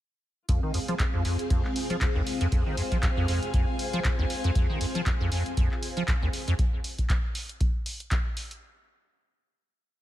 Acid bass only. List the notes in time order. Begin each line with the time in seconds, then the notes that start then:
0.49 F2
0.63 D#3
0.74 F2
0.88 F3
1.00 F2
1.14 F2
1.25 F2
1.50 F2
1.90 F3
2.01 F2
2.15 D#2
2.41 F2
2.52 F2
2.66 D#3
2.78 F2
2.92 F3
3.03 F2
3.17 F2
3.28 F2
3.54 F2
3.93 F3
4.05 F2
4.19 D#2
4.44 F2
4.55 F2
4.70 D#3
4.81 F2
4.95 F3
5.06 F2
5.21 F2
5.32 F2
5.57 F2
5.97 F3
6.08 F2
6.22 D#2
6.48 F2